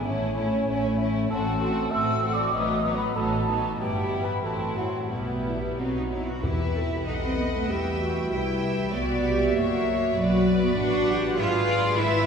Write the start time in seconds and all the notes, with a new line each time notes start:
0.04 A1 A2 A3 C#4 E4 C#5
0.35 A3 C#4 E4
0.66 A1 A2 A3 C#4 E4
0.97 A3 C#4 E4
1.30 A1 A2 A3 C4 F#4 A4 A5
1.60 A3 C4 F#4
1.91 A1 A2 A3 C4 F#4 E5 E6
2.23 A3 C4 F#4
2.34 D5 D6
2.53 A1 A2 F#3 B3 D#4 D#5 D#6
2.85 F#3 B3 D#4
2.95 B4 B5
3.16 A1 A2 F#3 B3 D#4 A4 A5
3.48 F#3 B3 D#4
3.79 G1 G2 G3 B3 E4 G4 G5
4.11 B3 E4
4.21 B4 B5
4.43 A1 A2 F#3 C4 E4 A4 A5
4.76 F#3 E4 F#4 F#5
5.10 B1 B2 G3 B3 E4 B4
5.46 G3 E4
5.77 B1 B2 F#3 B3 C4 D#4
5.95 D#4
6.11 F#3 D#4 E4
6.28 F#4
6.43 E2 E4 G4 B4 E5
6.75 A4
7.06 B1 D#4 A4 B4 D#5 F#5
7.23 C4
7.38 B3
7.54 A3
7.69 E2 G3 G4 B4 E5 G5
8.00 F#4
8.31 C2 G3 E4 G4 B4 E5 G5
8.92 B1 B3 F#4 D5 E5
9.25 G4
9.55 F#1 A#3 F#4 C#5 E5
10.16 B1 F#3 F#4 B4 D5
10.63 B3
10.77 A1 D4 F#4 D5 F#5
11.08 G4
11.37 G#1 F4 G#4 B4 E5
11.69 D5
11.98 E4 B4 E5